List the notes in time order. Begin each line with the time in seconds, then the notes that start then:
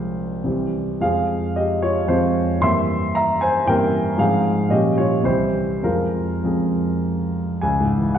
Already playing: C2 F3 G#3 C4 F4 C5
0.44 C2 E3 G3 C4
1.00 F2 F3 G#3 C4 G#4 F5
1.56 G4 D#5
1.82 F4 C#5
2.07 F2 F3 G#3 C4 F4 C5
2.61 G2 E3 A#3 C4 E5 C6
3.15 E5 A#5
3.41 C5 G#5
3.66 G2 E3 A#3 C4 A#4 G5
4.18 G#2 F3 G#3 C4 G#4 F5
4.69 A#2 F3 G3 C#4 G4 D#5
4.98 F4 C#5
5.24 C2 E3 G3 C4 E4 C5
5.82 F2 F3 G#3 C4 F4 A#4
6.43 F2 F3 G#3 C4 G#4
7.61 C#2 G#5
7.80 G#2
7.98 E3
8.15 F#5